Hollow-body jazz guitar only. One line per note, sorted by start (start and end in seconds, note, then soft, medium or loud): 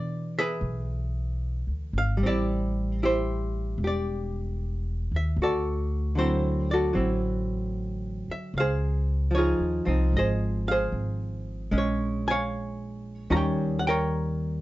0.00 2.19 E3 soft
0.00 0.60 D4 soft
0.00 0.38 G#4 soft
0.00 0.34 D5 medium
0.39 1.92 G#4 soft
0.39 1.92 B4 soft
0.39 1.97 E5 medium
1.98 2.22 F5 medium
2.17 5.36 G3 soft
2.23 3.03 C4 soft
2.23 3.02 G4 medium
2.23 3.04 D5 medium
2.28 3.02 E4 soft
3.03 4.56 E4 soft
3.03 3.83 G4 soft
3.03 3.77 C5 medium
3.84 5.36 G4 soft
3.84 4.58 D5 medium
5.16 5.38 E5 medium
5.42 6.18 F#4 soft
5.42 6.20 A4 soft
5.42 6.15 D5 medium
6.15 8.54 D3 soft
6.15 6.92 F#3 soft
6.15 6.73 C4 soft
6.15 6.71 C5 medium
6.20 6.73 E4 soft
6.71 6.94 F#4 soft
6.71 6.96 A4 soft
6.71 8.25 D5 medium
6.93 8.53 F#3 soft
6.93 8.54 C4 soft
6.93 8.55 E4 soft
8.31 8.54 E5 medium
8.58 9.37 G#4 soft
8.58 9.35 C5 medium
8.58 9.38 F5 medium
9.31 9.84 F3 soft
9.31 10.16 C#5 medium
9.36 9.87 D#4 soft
9.36 10.91 F4 soft
9.36 10.16 G#4 soft
9.85 11.71 F3 soft
9.85 10.18 C4 soft
9.85 10.18 D#4 soft
10.17 10.70 G#4 soft
10.17 10.71 C5 soft
10.17 10.65 D#5 medium
10.68 11.70 G#4 soft
10.68 11.70 C5 medium
10.68 11.76 F5 medium
11.71 13.30 G#3 soft
11.71 13.29 C#4 soft
11.78 12.27 C#5 medium
12.28 13.29 C#5 medium
12.28 13.29 F5 medium
12.28 13.32 G#5 medium
13.30 14.61 D#3 soft
13.30 14.61 G3 soft
13.30 13.88 C#4 soft
13.30 13.35 F4 medium
13.30 13.36 A#5 medium
13.36 13.89 C#5 soft
13.36 13.79 G5 soft
13.79 13.87 F#5 medium
13.87 14.61 A#4 medium
13.87 14.61 C#5 medium
13.87 14.61 G5 medium